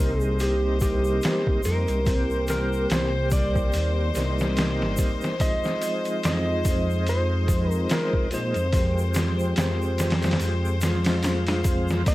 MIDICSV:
0, 0, Header, 1, 6, 480
1, 0, Start_track
1, 0, Tempo, 833333
1, 1191, Time_signature, 4, 2, 24, 8
1, 6996, End_track
2, 0, Start_track
2, 0, Title_t, "Electric slide guitar"
2, 0, Program_c, 0, 29
2, 0, Note_on_c, 0, 70, 82
2, 114, Note_off_c, 0, 70, 0
2, 114, Note_on_c, 0, 68, 82
2, 236, Note_on_c, 0, 67, 78
2, 248, Note_off_c, 0, 68, 0
2, 466, Note_off_c, 0, 67, 0
2, 473, Note_on_c, 0, 67, 87
2, 953, Note_on_c, 0, 70, 92
2, 966, Note_off_c, 0, 67, 0
2, 1409, Note_off_c, 0, 70, 0
2, 1440, Note_on_c, 0, 70, 85
2, 1678, Note_off_c, 0, 70, 0
2, 1681, Note_on_c, 0, 72, 88
2, 1913, Note_off_c, 0, 72, 0
2, 1916, Note_on_c, 0, 74, 93
2, 2850, Note_off_c, 0, 74, 0
2, 3117, Note_on_c, 0, 75, 108
2, 3571, Note_off_c, 0, 75, 0
2, 3603, Note_on_c, 0, 75, 94
2, 4054, Note_off_c, 0, 75, 0
2, 4085, Note_on_c, 0, 72, 95
2, 4437, Note_off_c, 0, 72, 0
2, 4437, Note_on_c, 0, 70, 95
2, 4561, Note_off_c, 0, 70, 0
2, 4563, Note_on_c, 0, 70, 81
2, 4801, Note_off_c, 0, 70, 0
2, 4803, Note_on_c, 0, 72, 81
2, 6694, Note_off_c, 0, 72, 0
2, 6957, Note_on_c, 0, 75, 108
2, 6996, Note_off_c, 0, 75, 0
2, 6996, End_track
3, 0, Start_track
3, 0, Title_t, "String section"
3, 0, Program_c, 1, 48
3, 0, Note_on_c, 1, 72, 71
3, 6957, Note_on_c, 1, 70, 83
3, 6958, Note_on_c, 1, 58, 81
3, 6959, Note_off_c, 1, 72, 0
3, 6996, Note_off_c, 1, 58, 0
3, 6996, Note_off_c, 1, 70, 0
3, 6996, End_track
4, 0, Start_track
4, 0, Title_t, "Tonewheel organ"
4, 0, Program_c, 2, 16
4, 0, Note_on_c, 2, 55, 78
4, 0, Note_on_c, 2, 58, 77
4, 0, Note_on_c, 2, 60, 73
4, 0, Note_on_c, 2, 63, 90
4, 921, Note_off_c, 2, 55, 0
4, 925, Note_off_c, 2, 58, 0
4, 930, Note_off_c, 2, 60, 0
4, 935, Note_off_c, 2, 63, 0
4, 944, Note_on_c, 2, 55, 74
4, 948, Note_on_c, 2, 58, 71
4, 952, Note_on_c, 2, 60, 68
4, 958, Note_on_c, 2, 63, 82
4, 1150, Note_off_c, 2, 55, 0
4, 1152, Note_off_c, 2, 58, 0
4, 1155, Note_off_c, 2, 60, 0
4, 1157, Note_off_c, 2, 63, 0
4, 1175, Note_on_c, 2, 55, 81
4, 1184, Note_on_c, 2, 58, 72
4, 1193, Note_on_c, 2, 60, 70
4, 1204, Note_on_c, 2, 67, 82
4, 2358, Note_off_c, 2, 55, 0
4, 2363, Note_off_c, 2, 58, 0
4, 2367, Note_off_c, 2, 60, 0
4, 2373, Note_off_c, 2, 67, 0
4, 2379, Note_on_c, 2, 55, 90
4, 2388, Note_on_c, 2, 58, 77
4, 2399, Note_on_c, 2, 60, 86
4, 2404, Note_on_c, 2, 63, 94
4, 3080, Note_off_c, 2, 55, 0
4, 3085, Note_off_c, 2, 58, 0
4, 3090, Note_off_c, 2, 60, 0
4, 3093, Note_off_c, 2, 63, 0
4, 3105, Note_on_c, 2, 53, 89
4, 3113, Note_on_c, 2, 56, 78
4, 3124, Note_on_c, 2, 60, 76
4, 3131, Note_on_c, 2, 63, 94
4, 4763, Note_off_c, 2, 53, 0
4, 4767, Note_off_c, 2, 56, 0
4, 4773, Note_off_c, 2, 60, 0
4, 4776, Note_off_c, 2, 63, 0
4, 4787, Note_on_c, 2, 53, 79
4, 4793, Note_on_c, 2, 56, 70
4, 4797, Note_on_c, 2, 60, 74
4, 4800, Note_on_c, 2, 63, 85
4, 4992, Note_off_c, 2, 53, 0
4, 4995, Note_off_c, 2, 56, 0
4, 4997, Note_off_c, 2, 60, 0
4, 4998, Note_off_c, 2, 63, 0
4, 5024, Note_on_c, 2, 53, 76
4, 5034, Note_on_c, 2, 56, 71
4, 5043, Note_on_c, 2, 60, 70
4, 5053, Note_on_c, 2, 67, 84
4, 6203, Note_off_c, 2, 53, 0
4, 6208, Note_off_c, 2, 56, 0
4, 6213, Note_off_c, 2, 60, 0
4, 6217, Note_off_c, 2, 67, 0
4, 6222, Note_on_c, 2, 53, 79
4, 6231, Note_on_c, 2, 56, 71
4, 6240, Note_on_c, 2, 60, 71
4, 6248, Note_on_c, 2, 65, 93
4, 6922, Note_off_c, 2, 53, 0
4, 6926, Note_off_c, 2, 56, 0
4, 6931, Note_off_c, 2, 60, 0
4, 6935, Note_off_c, 2, 65, 0
4, 6946, Note_on_c, 2, 55, 88
4, 6954, Note_on_c, 2, 58, 80
4, 6963, Note_on_c, 2, 60, 79
4, 6972, Note_on_c, 2, 63, 97
4, 6996, Note_off_c, 2, 55, 0
4, 6996, Note_off_c, 2, 58, 0
4, 6996, Note_off_c, 2, 60, 0
4, 6996, Note_off_c, 2, 63, 0
4, 6996, End_track
5, 0, Start_track
5, 0, Title_t, "Detuned saw bass"
5, 0, Program_c, 3, 39
5, 0, Note_on_c, 3, 36, 92
5, 689, Note_off_c, 3, 36, 0
5, 953, Note_on_c, 3, 41, 83
5, 1073, Note_off_c, 3, 41, 0
5, 1088, Note_on_c, 3, 36, 82
5, 1651, Note_off_c, 3, 36, 0
5, 1673, Note_on_c, 3, 36, 93
5, 2132, Note_off_c, 3, 36, 0
5, 2156, Note_on_c, 3, 39, 87
5, 2369, Note_off_c, 3, 39, 0
5, 2395, Note_on_c, 3, 36, 81
5, 2773, Note_on_c, 3, 31, 90
5, 2782, Note_off_c, 3, 36, 0
5, 2861, Note_off_c, 3, 31, 0
5, 3598, Note_on_c, 3, 41, 95
5, 4535, Note_off_c, 3, 41, 0
5, 4794, Note_on_c, 3, 46, 84
5, 4913, Note_off_c, 3, 46, 0
5, 4928, Note_on_c, 3, 41, 82
5, 5491, Note_off_c, 3, 41, 0
5, 5512, Note_on_c, 3, 41, 93
5, 5972, Note_off_c, 3, 41, 0
5, 5992, Note_on_c, 3, 41, 86
5, 6932, Note_off_c, 3, 41, 0
5, 6996, End_track
6, 0, Start_track
6, 0, Title_t, "Drums"
6, 118, Note_on_c, 9, 82, 37
6, 176, Note_off_c, 9, 82, 0
6, 226, Note_on_c, 9, 82, 47
6, 231, Note_on_c, 9, 46, 81
6, 284, Note_off_c, 9, 82, 0
6, 289, Note_off_c, 9, 46, 0
6, 463, Note_on_c, 9, 82, 82
6, 469, Note_on_c, 9, 36, 81
6, 471, Note_on_c, 9, 46, 57
6, 521, Note_off_c, 9, 82, 0
6, 527, Note_off_c, 9, 36, 0
6, 529, Note_off_c, 9, 46, 0
6, 601, Note_on_c, 9, 82, 41
6, 659, Note_off_c, 9, 82, 0
6, 701, Note_on_c, 9, 82, 42
6, 709, Note_on_c, 9, 46, 82
6, 719, Note_on_c, 9, 38, 115
6, 759, Note_off_c, 9, 82, 0
6, 767, Note_off_c, 9, 46, 0
6, 777, Note_off_c, 9, 38, 0
6, 846, Note_on_c, 9, 36, 90
6, 904, Note_off_c, 9, 36, 0
6, 941, Note_on_c, 9, 82, 82
6, 951, Note_on_c, 9, 46, 62
6, 998, Note_off_c, 9, 82, 0
6, 1008, Note_off_c, 9, 46, 0
6, 1082, Note_on_c, 9, 82, 37
6, 1085, Note_on_c, 9, 42, 42
6, 1140, Note_off_c, 9, 82, 0
6, 1142, Note_off_c, 9, 42, 0
6, 1188, Note_on_c, 9, 82, 48
6, 1189, Note_on_c, 9, 36, 106
6, 1189, Note_on_c, 9, 46, 81
6, 1245, Note_off_c, 9, 82, 0
6, 1247, Note_off_c, 9, 36, 0
6, 1247, Note_off_c, 9, 46, 0
6, 1326, Note_on_c, 9, 82, 28
6, 1384, Note_off_c, 9, 82, 0
6, 1427, Note_on_c, 9, 82, 67
6, 1429, Note_on_c, 9, 46, 61
6, 1439, Note_on_c, 9, 38, 44
6, 1485, Note_off_c, 9, 82, 0
6, 1487, Note_off_c, 9, 46, 0
6, 1497, Note_off_c, 9, 38, 0
6, 1572, Note_on_c, 9, 82, 36
6, 1630, Note_off_c, 9, 82, 0
6, 1669, Note_on_c, 9, 46, 82
6, 1674, Note_on_c, 9, 82, 44
6, 1679, Note_on_c, 9, 38, 116
6, 1727, Note_off_c, 9, 46, 0
6, 1731, Note_off_c, 9, 82, 0
6, 1737, Note_off_c, 9, 38, 0
6, 1905, Note_on_c, 9, 82, 86
6, 1909, Note_on_c, 9, 46, 66
6, 1910, Note_on_c, 9, 36, 93
6, 1963, Note_off_c, 9, 82, 0
6, 1967, Note_off_c, 9, 46, 0
6, 1968, Note_off_c, 9, 36, 0
6, 2047, Note_on_c, 9, 36, 92
6, 2049, Note_on_c, 9, 82, 30
6, 2105, Note_off_c, 9, 36, 0
6, 2107, Note_off_c, 9, 82, 0
6, 2147, Note_on_c, 9, 82, 46
6, 2152, Note_on_c, 9, 46, 78
6, 2204, Note_off_c, 9, 82, 0
6, 2209, Note_off_c, 9, 46, 0
6, 2390, Note_on_c, 9, 82, 76
6, 2391, Note_on_c, 9, 46, 60
6, 2402, Note_on_c, 9, 38, 32
6, 2448, Note_off_c, 9, 82, 0
6, 2449, Note_off_c, 9, 46, 0
6, 2459, Note_off_c, 9, 38, 0
6, 2528, Note_on_c, 9, 82, 34
6, 2541, Note_on_c, 9, 38, 52
6, 2586, Note_off_c, 9, 82, 0
6, 2598, Note_off_c, 9, 38, 0
6, 2631, Note_on_c, 9, 46, 85
6, 2631, Note_on_c, 9, 82, 40
6, 2641, Note_on_c, 9, 38, 108
6, 2688, Note_off_c, 9, 46, 0
6, 2688, Note_off_c, 9, 82, 0
6, 2699, Note_off_c, 9, 38, 0
6, 2777, Note_on_c, 9, 38, 42
6, 2835, Note_off_c, 9, 38, 0
6, 2862, Note_on_c, 9, 82, 90
6, 2871, Note_on_c, 9, 36, 83
6, 2872, Note_on_c, 9, 46, 59
6, 2920, Note_off_c, 9, 82, 0
6, 2929, Note_off_c, 9, 36, 0
6, 2929, Note_off_c, 9, 46, 0
6, 3002, Note_on_c, 9, 82, 35
6, 3019, Note_on_c, 9, 38, 50
6, 3060, Note_off_c, 9, 82, 0
6, 3077, Note_off_c, 9, 38, 0
6, 3109, Note_on_c, 9, 46, 82
6, 3111, Note_on_c, 9, 36, 106
6, 3113, Note_on_c, 9, 82, 49
6, 3167, Note_off_c, 9, 46, 0
6, 3168, Note_off_c, 9, 36, 0
6, 3170, Note_off_c, 9, 82, 0
6, 3247, Note_on_c, 9, 82, 30
6, 3258, Note_on_c, 9, 38, 41
6, 3305, Note_off_c, 9, 82, 0
6, 3315, Note_off_c, 9, 38, 0
6, 3350, Note_on_c, 9, 46, 65
6, 3354, Note_on_c, 9, 82, 70
6, 3407, Note_off_c, 9, 46, 0
6, 3411, Note_off_c, 9, 82, 0
6, 3485, Note_on_c, 9, 82, 33
6, 3486, Note_on_c, 9, 42, 42
6, 3543, Note_off_c, 9, 82, 0
6, 3544, Note_off_c, 9, 42, 0
6, 3591, Note_on_c, 9, 46, 85
6, 3593, Note_on_c, 9, 82, 51
6, 3601, Note_on_c, 9, 38, 113
6, 3648, Note_off_c, 9, 46, 0
6, 3651, Note_off_c, 9, 82, 0
6, 3659, Note_off_c, 9, 38, 0
6, 3829, Note_on_c, 9, 82, 83
6, 3830, Note_on_c, 9, 46, 67
6, 3831, Note_on_c, 9, 36, 88
6, 3887, Note_off_c, 9, 82, 0
6, 3888, Note_off_c, 9, 36, 0
6, 3888, Note_off_c, 9, 46, 0
6, 3975, Note_on_c, 9, 82, 31
6, 4033, Note_off_c, 9, 82, 0
6, 4069, Note_on_c, 9, 46, 76
6, 4073, Note_on_c, 9, 82, 44
6, 4127, Note_off_c, 9, 46, 0
6, 4131, Note_off_c, 9, 82, 0
6, 4309, Note_on_c, 9, 46, 57
6, 4310, Note_on_c, 9, 36, 83
6, 4314, Note_on_c, 9, 82, 90
6, 4366, Note_off_c, 9, 46, 0
6, 4367, Note_off_c, 9, 36, 0
6, 4372, Note_off_c, 9, 82, 0
6, 4443, Note_on_c, 9, 82, 38
6, 4501, Note_off_c, 9, 82, 0
6, 4547, Note_on_c, 9, 46, 83
6, 4548, Note_on_c, 9, 82, 47
6, 4558, Note_on_c, 9, 38, 110
6, 4605, Note_off_c, 9, 46, 0
6, 4606, Note_off_c, 9, 82, 0
6, 4615, Note_off_c, 9, 38, 0
6, 4685, Note_on_c, 9, 36, 86
6, 4742, Note_off_c, 9, 36, 0
6, 4785, Note_on_c, 9, 46, 62
6, 4793, Note_on_c, 9, 82, 73
6, 4843, Note_off_c, 9, 46, 0
6, 4851, Note_off_c, 9, 82, 0
6, 4920, Note_on_c, 9, 42, 43
6, 4930, Note_on_c, 9, 82, 34
6, 4978, Note_off_c, 9, 42, 0
6, 4988, Note_off_c, 9, 82, 0
6, 5025, Note_on_c, 9, 46, 84
6, 5028, Note_on_c, 9, 36, 103
6, 5031, Note_on_c, 9, 82, 42
6, 5083, Note_off_c, 9, 46, 0
6, 5085, Note_off_c, 9, 36, 0
6, 5089, Note_off_c, 9, 82, 0
6, 5174, Note_on_c, 9, 82, 35
6, 5231, Note_off_c, 9, 82, 0
6, 5265, Note_on_c, 9, 82, 87
6, 5267, Note_on_c, 9, 46, 73
6, 5277, Note_on_c, 9, 38, 98
6, 5323, Note_off_c, 9, 82, 0
6, 5325, Note_off_c, 9, 46, 0
6, 5335, Note_off_c, 9, 38, 0
6, 5411, Note_on_c, 9, 82, 39
6, 5468, Note_off_c, 9, 82, 0
6, 5507, Note_on_c, 9, 46, 86
6, 5515, Note_on_c, 9, 82, 50
6, 5517, Note_on_c, 9, 38, 110
6, 5564, Note_off_c, 9, 46, 0
6, 5572, Note_off_c, 9, 82, 0
6, 5574, Note_off_c, 9, 38, 0
6, 5656, Note_on_c, 9, 82, 33
6, 5714, Note_off_c, 9, 82, 0
6, 5749, Note_on_c, 9, 46, 65
6, 5754, Note_on_c, 9, 82, 89
6, 5759, Note_on_c, 9, 38, 90
6, 5807, Note_off_c, 9, 46, 0
6, 5812, Note_off_c, 9, 82, 0
6, 5817, Note_off_c, 9, 38, 0
6, 5819, Note_on_c, 9, 46, 68
6, 5830, Note_on_c, 9, 38, 84
6, 5877, Note_off_c, 9, 46, 0
6, 5887, Note_off_c, 9, 38, 0
6, 5888, Note_on_c, 9, 46, 63
6, 5889, Note_on_c, 9, 82, 33
6, 5899, Note_on_c, 9, 38, 84
6, 5939, Note_off_c, 9, 46, 0
6, 5939, Note_on_c, 9, 46, 60
6, 5946, Note_off_c, 9, 82, 0
6, 5949, Note_off_c, 9, 38, 0
6, 5949, Note_on_c, 9, 38, 76
6, 5987, Note_off_c, 9, 46, 0
6, 5987, Note_on_c, 9, 46, 78
6, 5992, Note_on_c, 9, 82, 51
6, 6007, Note_off_c, 9, 38, 0
6, 6045, Note_off_c, 9, 46, 0
6, 6050, Note_off_c, 9, 82, 0
6, 6135, Note_on_c, 9, 82, 35
6, 6192, Note_off_c, 9, 82, 0
6, 6227, Note_on_c, 9, 82, 85
6, 6228, Note_on_c, 9, 46, 70
6, 6239, Note_on_c, 9, 38, 98
6, 6285, Note_off_c, 9, 82, 0
6, 6286, Note_off_c, 9, 46, 0
6, 6296, Note_off_c, 9, 38, 0
6, 6362, Note_on_c, 9, 46, 72
6, 6363, Note_on_c, 9, 82, 41
6, 6372, Note_on_c, 9, 38, 100
6, 6420, Note_off_c, 9, 46, 0
6, 6420, Note_off_c, 9, 82, 0
6, 6430, Note_off_c, 9, 38, 0
6, 6466, Note_on_c, 9, 46, 79
6, 6470, Note_on_c, 9, 82, 42
6, 6476, Note_on_c, 9, 38, 99
6, 6524, Note_off_c, 9, 46, 0
6, 6527, Note_off_c, 9, 82, 0
6, 6534, Note_off_c, 9, 38, 0
6, 6604, Note_on_c, 9, 46, 73
6, 6607, Note_on_c, 9, 82, 29
6, 6615, Note_on_c, 9, 38, 96
6, 6662, Note_off_c, 9, 46, 0
6, 6664, Note_off_c, 9, 82, 0
6, 6672, Note_off_c, 9, 38, 0
6, 6706, Note_on_c, 9, 46, 67
6, 6708, Note_on_c, 9, 36, 93
6, 6708, Note_on_c, 9, 82, 86
6, 6764, Note_off_c, 9, 46, 0
6, 6765, Note_off_c, 9, 82, 0
6, 6766, Note_off_c, 9, 36, 0
6, 6844, Note_on_c, 9, 82, 37
6, 6857, Note_on_c, 9, 38, 50
6, 6901, Note_off_c, 9, 82, 0
6, 6915, Note_off_c, 9, 38, 0
6, 6948, Note_on_c, 9, 46, 86
6, 6948, Note_on_c, 9, 82, 49
6, 6949, Note_on_c, 9, 36, 108
6, 6996, Note_off_c, 9, 36, 0
6, 6996, Note_off_c, 9, 46, 0
6, 6996, Note_off_c, 9, 82, 0
6, 6996, End_track
0, 0, End_of_file